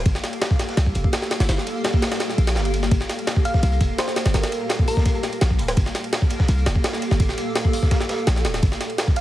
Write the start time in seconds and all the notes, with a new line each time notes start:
0.06 G1, kick, closed hi-hat, ride
0.15 snare, closed hi-hat
0.24 snare, closed hi-hat, ride
0.33 ride
0.41 snare, closed hi-hat, ride
0.51 kick, closed hi-hat
0.59 snare, closed hi-hat, ride
0.69 snare, ride
0.77 C2, snare, closed hi-hat, ride
0.86 kick, closed hi-hat
0.95 F1, closed hi-hat, ride
1.04 kick
1.12 snare, open hi-hat, ride
1.22 snare, closed hi-hat
1.31 snare, closed hi-hat, ride
1.40 G1, snare, ride
1.49 G1, snare, closed hi-hat, ride
1.58 snare
1.66 closed hi-hat, ride
1.84 snare, closed hi-hat, ride
1.94 kick
2.02 snare, closed hi-hat, ride
2.07 snare, closed hi-hat
2.12 snare, closed hi-hat, ride
2.20 snare, closed hi-hat, ride
2.29 snare, closed hi-hat
2.38 A#1, ride
2.47 snare, ride
2.55 G1, snare, closed hi-hat
2.65 ride
2.74 closed hi-hat, ride
2.83 snare, closed hi-hat
2.91 G1, kick, closed hi-hat, ride
3.00 snare, closed hi-hat
3.09 snare, closed hi-hat, ride
3.19 ride
3.27 snare, closed hi-hat, ride
3.36 kick, closed hi-hat
3.45 F5, closed hi-hat, ride
3.54 kick, snare
3.63 C2, closed hi-hat, ride
3.72 closed hi-hat
3.81 F1, kick, closed hi-hat, ride
3.98 C5, snare, open hi-hat, ride
4.08 snare, closed hi-hat
4.16 snare, closed hi-hat, ride
4.26 G1, snare, ride
4.34 G1 A#4, snare, closed hi-hat, ride
4.43 snare, ride
4.52 closed hi-hat, ride
4.69 snare, closed hi-hat, ride
4.79 kick
4.88 A#4, closed hi-hat, open hi-hat
4.97 kick, snare
5.06 kick, closed hi-hat, ride
5.15 closed hi-hat
5.23 snare, closed hi-hat, ride
5.32 closed hi-hat, ride
5.41 A#1, snare, closed hi-hat, ride
5.51 kick
5.59 D1, closed hi-hat, ride
5.68 snare, closed hi-hat, ride
5.77 G1, kick, closed hi-hat, ride
5.86 snare, closed hi-hat
5.95 snare, closed hi-hat, ride
6.04 ride
6.13 snare, closed hi-hat, ride
6.22 kick, closed hi-hat
6.30 closed hi-hat, ride
6.39 kick, snare
6.48 C2, closed hi-hat, ride
6.58 closed hi-hat
6.66 F1, snare, closed hi-hat, ride
6.76 kick
6.84 snare, open hi-hat, ride
6.93 snare, closed hi-hat
7.02 closed hi-hat, ride
7.11 G1, snare
7.20 G1, kick, closed hi-hat, ride
7.29 snare
7.38 closed hi-hat, ride
7.56 snare, closed hi-hat, ride
7.65 kick
7.73 closed hi-hat, open hi-hat
7.83 kick, snare
7.91 kick, snare, closed hi-hat, ride
8.01 snare, closed hi-hat
8.09 snare, closed hi-hat, ride
8.18 closed hi-hat
8.27 A#1, snare, closed hi-hat, ride
8.36 snare
8.44 D1, snare, closed hi-hat, ride
8.54 snare, closed hi-hat, ride
8.63 G1, kick, closed hi-hat, ride
8.72 snare, closed hi-hat
8.81 snare, closed hi-hat, ride
8.90 ride
8.98 snare, closed hi-hat, ride
9.08 kick, closed hi-hat
9.16 F5, closed hi-hat, ride